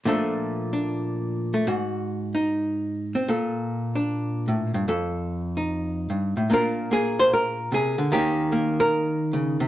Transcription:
0.05 A#2 F3 A3 D4 A4
0.73 D4
1.54 A3
1.67 G#2 F#4
2.35 D#4
3.15 C4
3.28 A#2 A4
3.95 D4
4.48 A2
4.74 G2
4.88 F2 A4
5.57 D#4
6.10 G2
6.37 A2
6.50 A#2 A#3 D4 F4 A#4
6.91 A#3 G#4
7.19 C5
7.33 A#4
7.72 C3 G#4
7.98 D3
8.12 D#3 A#3 C#4 G4
8.52 A#3
8.80 A#4
9.33 C#3
9.60 C3

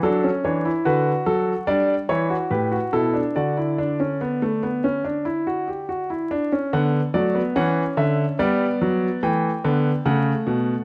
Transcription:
0.03 F#3 D4 A4
0.24 C#4
0.44 E3 D4 C#5
0.65 E4
0.85 D3 F#4 B4
1.26 F#3 A4
1.67 G3 D4 D5
2.09 E3 E4 C#5
2.30 F#4
2.51 A2 G4 B4
2.72 F#4
2.93 B2 E4 A4
3.14 D4
3.36 D3 F#4 D5
3.57 E4
3.78 D4
4.00 C#4
4.21 B3
4.42 A3
4.63 B3
4.84 C#4
5.05 D4
5.25 E4
5.47 F#4
5.68 G4
5.89 F#4
6.10 E4
6.31 D4
6.52 C#4
6.73 D3 B3 F#5
7.14 F#3 A3 D5
7.35 B3
7.56 E3 C#4 F#5
7.97 D3 E5
8.39 G3 B3 D5
8.81 F#3
9.23 E3 A3 G5
9.64 D3 B3
10.06 C#3 A3 F#5
10.47 B2

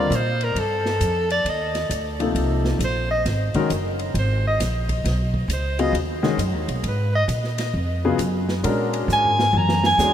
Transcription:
Already playing: D3 G3 C4 F4 A#4 D5
0.10 A#2, hi-hat pedal, ride
0.15 C5
0.41 A#4, ride
0.55 G2 A4, ride
0.85 snare
1.00 F2, hi-hat pedal, ride
1.30 D5, ride
1.44 D#2, ride
1.49 D#5
1.75 snare, ride
1.89 D2, hi-hat pedal, ride
2.20 C3 F3 A#3 D#4 A4, ride
2.35 C2, ride
2.65 snare
2.79 A#1, hi-hat pedal, ride
2.84 C5
3.11 D#5
3.25 G#1, snare, ride
3.54 D#3 G#3 C#4 F#4 A#4, muted upright bass stroke, kick, ride
3.70 F#1, hi-hat pedal, ride
3.99 ride
4.14 G#1, ride
4.18 C5
4.47 D#5
4.60 A#1, snare, hi-hat pedal, ride
4.89 kick, ride
5.04 B1, snare, ride
5.34 kick
5.48 C#2, hi-hat pedal, ride
5.53 C5
5.79 C#3 F#3 B3 F4 G#4 D#5, ride
5.93 D#2, ride
6.23 D#3 G#3 C#4 F#4 G#4, snare
6.38 F#2, hi-hat pedal, ride
6.53 D#2
6.68 B1, ride
6.83 G#2, ride
6.88 B4
7.15 D#5
7.28 A#2, hi-hat pedal, ride
7.44 snare
7.58 snare, ride
7.74 F2
8.04 C#3 F#3 B3 F4 G#4
8.18 F#2, hi-hat pedal, ride
8.49 snare
8.63 A#2 G#3 C#4 D4 F#4 A#4, ride
8.93 ride
9.08 G#2, hi-hat pedal
9.13 G#5
9.25 floor tom
9.39 snare
9.53 F#2, mid tom
9.58 A#5
9.69 snare
9.84 G#5, snare
9.98 E2 G#3 C#4 D4 F#4 G#4, snare, hi-hat pedal

